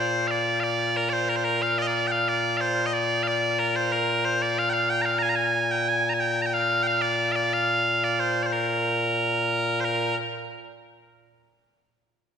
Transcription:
0.00 10.15 A#2 medium
0.00 0.27 C5 medium
0.27 0.60 D5 medium
0.27 0.31 F5 medium
0.60 0.97 D5 medium
0.60 0.63 F5 medium
0.97 1.10 A#4 medium
1.10 1.29 C5 medium
1.10 1.13 D5 medium
1.29 1.36 A#4 medium
1.36 1.45 C5 medium
1.45 1.62 A#4 medium
1.62 1.78 F5 loud
1.78 1.82 D5 medium
1.78 1.87 D#5 medium
1.87 1.95 D5 medium
1.95 2.07 D5 loud
2.07 2.12 G5 medium
2.12 2.28 F5 medium
2.28 2.57 D5 medium
2.57 2.86 C5 medium
2.57 2.61 F5 medium
2.86 2.93 D#5 medium
2.93 3.23 D5 loud
3.23 3.27 F5 medium
3.27 3.59 D5 medium
3.59 3.76 A#4 medium
3.76 3.92 C5 medium
3.92 4.25 A#4 medium
4.25 4.42 C5 loud
4.42 4.58 D5 medium
4.58 4.70 F5 loud
4.70 4.90 F5 loud
4.70 4.73 G5 loud
4.90 5.02 G5 loud
5.02 5.19 F5 medium
5.02 5.05 A#5 medium
5.19 5.29 G#5 loud
5.19 5.23 A#5 loud
5.29 5.35 A#5 medium
5.35 5.71 G#5 loud
5.71 5.88 G5 medium
5.88 6.09 G#5 loud
6.09 6.14 A#5 medium
6.14 6.20 G#5 medium
6.20 6.42 G5 loud
6.42 6.46 A#5 medium
6.46 6.54 G5 medium
6.54 6.83 F5 loud
6.83 6.87 G5 loud
6.87 7.01 F5 loud
7.01 7.32 D5 medium
7.32 7.53 D5 medium
7.32 7.36 F5 medium
7.53 8.04 F5 loud
8.04 8.20 D5 medium
8.20 8.43 C5 medium
8.43 8.53 C5 medium
8.43 8.46 D5 medium
8.53 9.81 A#4 medium
9.81 9.85 C5 medium
9.85 10.15 A#4 medium

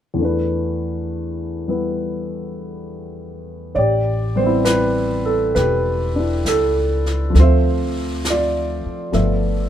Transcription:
0.14 3.74 E2 soft
0.14 3.75 E3 soft
0.19 3.77 A3 soft
0.19 3.78 D4 soft
0.24 1.69 B4 soft
1.67 3.76 G3 soft
1.67 3.76 B3 soft
1.67 3.76 E4 soft
1.67 3.77 B4 soft
3.75 5.52 A1 medium
3.75 5.53 G4 soft
3.75 3.78 C#5 soft
3.75 4.38 D5 medium
3.75 brush sweep soft
4.36 7.34 G3 soft
4.36 7.36 B3 soft
4.36 4.64 C5 medium
4.42 7.36 C4 soft
4.42 6.18 E4 soft
4.65 5.27 B4 medium
4.65 snare soft
4.65 hi-hat pedal soft
5.25 5.57 A4 medium
5.55 6.42 E1 medium
5.55 7.32 G4 soft
5.55 6.41 B4 medium
5.55 brush sweep soft
5.55 snare soft
6.16 7.34 D4 soft
6.16 7.36 E4 soft
6.45 7.31 C#2 medium
6.45 7.32 A4 medium
6.45 snare soft
6.45 hi-hat pedal soft
7.06 snare soft
7.30 9.11 F3 soft
7.30 9.11 A3 soft
7.35 8.82 D2 medium
7.35 9.15 C4 soft
7.35 brush sweep soft
7.35 snare soft
7.39 8.29 F4 soft
7.39 8.30 C5 medium
7.39 9.13 E5 soft
8.25 snare soft
8.25 hi-hat pedal soft
8.30 9.69 F4 soft
8.30 9.69 D5 medium
8.86 muted upright bass stroke soft
9.12 9.69 G1 medium
9.12 9.69 F3 soft
9.12 9.69 A3 soft
9.12 9.69 B3 soft
9.12 9.69 E5 soft
9.12 brush sweep soft
9.12 snare soft

